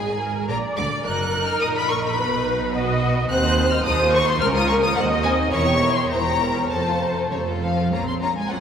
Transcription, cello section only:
0.00 0.47 G#2 medium
0.48 0.56 A#2 loud
0.76 0.84 D3 loud
1.05 1.58 F#2 medium
1.62 2.17 A#2 medium
2.18 3.30 B2 loud
3.30 3.78 D#2 loud
3.85 4.35 D#2 loud
4.41 4.91 C#2 loud
4.97 5.46 D#2 loud
5.52 6.03 E2 loud
6.10 6.63 E2 loud
6.70 7.24 F2 medium
7.32 7.86 F2 medium
7.32 7.40 C#3 medium
7.62 7.92 F3 medium
7.92 8.07 A#3 loud
8.07 8.22 C4 medium
8.22 8.36 A#3 medium
8.36 8.50 G#3 medium
8.50 8.56 F#3 loud

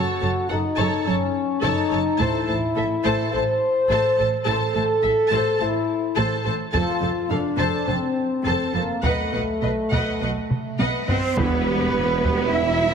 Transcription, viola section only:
0.00 0.20 A4 medium
0.22 0.30 A4 soft
0.51 0.59 A4 soft
0.78 1.05 A4 medium
1.07 1.15 A4 soft
1.62 1.89 A4 medium
1.91 1.99 A4 soft
2.19 2.46 A4 medium
2.47 2.55 A4 soft
2.76 2.84 A4 soft
3.05 3.32 A4 medium
3.34 3.42 A4 soft
3.90 4.16 A4 medium
4.18 4.26 A4 medium
4.46 4.73 A4 medium
4.75 4.83 A4 soft
5.03 5.11 A4 soft
5.31 5.58 A4 medium
5.60 5.68 A4 soft
6.17 6.43 A4 medium
6.45 6.53 A4 medium
6.74 7.00 A4 medium
7.03 7.11 A4 soft
7.31 7.39 A4 soft
7.59 7.86 A4 medium
7.88 7.96 A4 soft
8.46 8.73 A4 medium
8.75 8.83 A4 soft
9.04 9.31 B4 soft
9.34 9.42 B4 soft
9.64 9.72 B4 soft
9.92 10.19 B4 soft
10.22 10.30 B4 soft
10.81 11.07 B4 soft
11.10 11.18 B4 soft
11.39 11.65 E3 soft
11.39 11.65 E4 soft
11.67 11.96 G3 soft
11.67 11.96 G4 soft
11.96 12.25 E3 soft
11.96 12.25 E4 soft
12.26 12.54 G3 soft
12.26 12.54 G4 soft
12.54 12.81 E3 soft
12.54 12.81 E4 soft
12.83 12.94 G3 soft
12.83 12.94 G4 soft

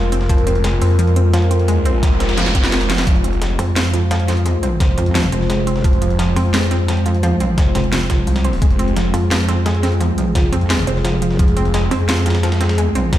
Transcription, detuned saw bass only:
0.00 0.28 F1 medium
0.29 0.80 F1 loud
0.81 2.19 F2 loud
2.20 2.71 F1 medium
2.72 3.06 F1 loud
3.07 3.58 F1 loud
5.84 6.35 F1 loud
8.27 8.60 C2 loud
8.62 9.12 F1 loud
11.39 11.90 F1 loud

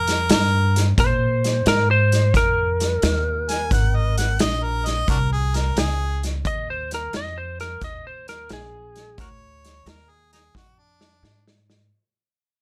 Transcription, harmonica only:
0.00 0.30 A#4 medium
0.32 0.86 A#4 medium
3.50 3.71 G#5 medium
3.73 3.97 F#5 medium
3.96 4.17 D#5 medium
4.18 4.39 F#5 medium
4.41 4.65 D#5 medium
4.63 4.88 A#4 medium
4.86 5.08 D#5 medium
5.09 5.17 D4 medium
5.09 5.17 F#4 medium
5.09 5.31 A#4 loud
5.32 5.57 G#4 medium
5.56 5.80 A#4 medium
5.79 6.22 G#4 loud
9.20 9.29 F#4 medium
9.20 9.28 A#4 medium
9.20 9.90 C#5 medium
9.88 10.11 A#4 medium
10.10 10.32 G#4 medium
10.33 10.39 D#4 medium
10.33 10.55 G#4 medium
10.57 10.81 F#4 medium
10.79 11.45 D4 medium

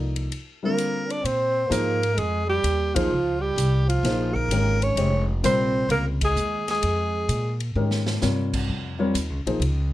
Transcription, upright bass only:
0.00 0.27 C2 medium
1.24 1.70 A#2 medium
1.71 2.16 G#2 medium
2.18 2.63 F2 medium
2.64 3.09 D#2 medium
3.10 3.55 C#2 medium
3.56 4.02 C2 medium
4.03 4.48 A#1 medium
4.48 4.95 G#1 medium
4.96 5.42 F1 medium
5.44 5.88 A#1 medium
5.89 6.35 C#2 medium
6.36 6.81 D#2 medium
6.83 7.28 F2 medium
7.29 7.74 A#2 medium
7.75 8.21 G#2 medium
8.23 8.68 G2 medium
8.69 9.14 F2 medium
9.14 9.30 D#2 medium
9.30 9.45 C#2 medium
9.46 9.59 A#1 medium
9.60 9.93 C#2 medium

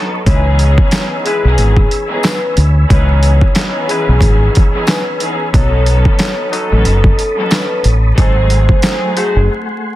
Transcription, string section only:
0.00 0.24 F#3 medium
0.00 0.25 B3 medium
0.00 0.25 C#4 medium
0.00 0.25 D#4 medium
0.00 0.25 A4 medium
0.26 1.34 E3 loud
0.26 1.34 B3 loud
0.26 1.34 C#4 loud
0.26 1.34 D#4 loud
0.26 1.34 G#4 loud
1.46 1.89 E3 loud
1.46 1.89 B3 medium
1.46 1.89 C#4 loud
1.46 1.89 D#4 medium
1.46 1.89 G#4 loud
2.09 2.53 E3 loud
2.09 2.53 B3 loud
2.09 2.54 C#4 medium
2.09 2.54 D#4 medium
2.09 2.54 G#4 loud
2.90 3.52 E3 loud
2.90 3.52 B3 loud
2.90 3.52 C#4 loud
2.90 3.52 D#4 loud
2.90 3.52 G#4 loud
3.56 4.63 E3 loud
3.56 4.64 B3 loud
3.56 4.64 C#4 loud
3.56 4.64 D#4 loud
3.56 4.64 G#4 loud
4.73 5.17 E3 loud
4.73 5.17 B3 medium
4.73 5.17 C#4 medium
4.73 5.18 D#4 medium
4.73 5.18 G#4 loud
5.20 5.51 E3 medium
5.20 5.52 B3 medium
5.20 5.52 C#4 medium
5.20 5.52 D#4 medium
5.20 5.52 G#4 loud
5.53 6.61 F#3 loud
5.53 6.61 B3 loud
5.53 6.61 C#4 loud
5.53 6.61 D#4 loud
5.53 6.61 A4 loud
6.71 7.15 F#3 loud
6.71 7.15 B3 medium
6.71 7.15 C#4 medium
6.71 7.15 D#4 loud
6.71 7.15 A4 loud
7.38 7.81 F#3 loud
7.38 7.81 B3 medium
7.38 7.82 C#4 medium
7.38 7.82 D#4 medium
7.38 7.82 A4 loud
8.16 8.78 F#3 loud
8.16 8.78 A3 medium
8.16 8.79 C4 medium
8.16 8.79 D#4 medium
8.16 8.79 G#4 loud
8.85 9.50 F#3 loud
8.85 9.50 A3 medium
8.85 9.50 C4 loud
8.85 9.50 D#4 medium
8.85 9.51 G#4 loud

